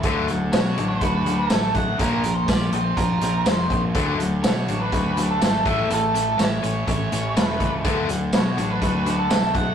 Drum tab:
HH |xxxxxxxx|xxxxxxxx|xxxxxxxx|xxxxxxxx|
TB |--x---x-|--x---x-|--x---x-|--x---x-|
SD |--o---o-|--o---o-|--o---o-|--o---o-|
BD |o---o--o|o-o-o--o|o---o--o|----o--o|

HH |xxxxxxxx|
TB |--x---x-|
SD |--o---o-|
BD |o---o--o|